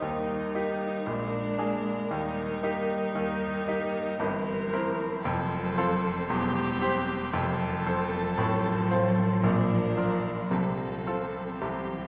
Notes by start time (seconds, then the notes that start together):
Already playing: D#4
0.02 D#2 D#3 G3 A#4
0.54 A#3 D#4 G4
1.06 A#1 A#2 G#3 D4
1.58 A#3 D4 G#4
2.11 D#2 D#3 G3 D#4
2.63 A#3 D#4 G4
3.15 D#2 D#3
3.68 A#3 D#4 G4
4.20 G1 G2 E3 C4 A#4
4.73 C4 E4 A#4
5.24 F1 F2 F3 A4
5.78 C4 F4 A4
6.29 E1 E2 G3 G4
6.81 C4 G4 C5
7.33 F1 F2 F3 A4
7.86 C4 A4 C5
8.38 A1 A2 C4
8.91 C4 F4 C5
9.43 A#1 A#2 D4 A#4
9.97 D4 F4 A#4
10.51 C2 C3 C4 A4
11.07 C4 F4 A4
11.61 C2 C3 E3 G4